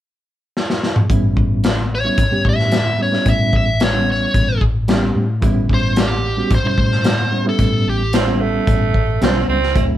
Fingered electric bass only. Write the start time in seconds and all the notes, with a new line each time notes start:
1.10 A1
1.37 A1
2.18 A1
2.32 muted fingered electric bass stroke
2.45 A2
3.26 A2
3.53 A1
4.34 A1
4.61 A1
5.16 A2
5.42 A1
5.70 A1
6.51 A1
6.78 A2
7.59 A2
7.86 A1
8.67 A1
8.94 A1
9.22 B1
9.48 C#2
9.76 D2